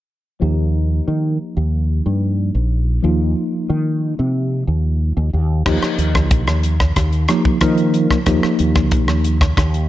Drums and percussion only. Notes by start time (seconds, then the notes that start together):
5.66 kick, cross-stick, crash
5.82 cross-stick, closed hi-hat
5.99 closed hi-hat
6.15 kick, cross-stick
6.31 kick, closed hi-hat
6.47 cross-stick, closed hi-hat
6.63 closed hi-hat
6.80 kick, cross-stick
6.96 kick, cross-stick, closed hi-hat
7.13 closed hi-hat
7.28 cross-stick, closed hi-hat
7.45 kick
7.61 kick, cross-stick, closed hi-hat
7.78 closed hi-hat
7.94 closed hi-hat
8.11 kick, cross-stick
8.26 kick, cross-stick, closed hi-hat
8.43 cross-stick
8.59 closed hi-hat
8.75 kick, cross-stick, closed hi-hat
8.91 kick, closed hi-hat
9.08 cross-stick
9.24 closed hi-hat
9.41 kick, cross-stick, closed hi-hat
9.57 kick, cross-stick, closed hi-hat
9.74 closed hi-hat